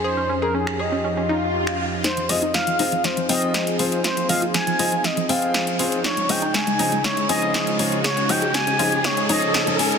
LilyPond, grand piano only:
\new Staff \with { instrumentName = "Grand piano" } { \time 4/4 \key f \minor \tempo 4 = 120 r1 | r8 <f c' f' aes' ees''>16 r8. <f c' f' aes' ees''>16 r8. <f c' f' aes' g''>4 <f c' f' aes' c''>16 r16 | r8 <f c' f' aes' ees''>16 r8. <f c' f' aes' ees''>16 r8. <f c' f' aes' g''>4 <c' f' aes' c''>16 r16 | r8 <f des' ees' aes' ees''>16 r8. <f des' ees' aes' ees''>16 r8. <f des' ees' aes' aes''>4 <f des' ees' aes' des''>16 r16 |
r8 <f des' ees' aes' ees''>16 r8. <f des' ees' aes' ees''>16 r8. <f des' ees' aes' des''>8. <f des' ees' aes' des''>16 <des' ees' aes' aes''>16 r16 | }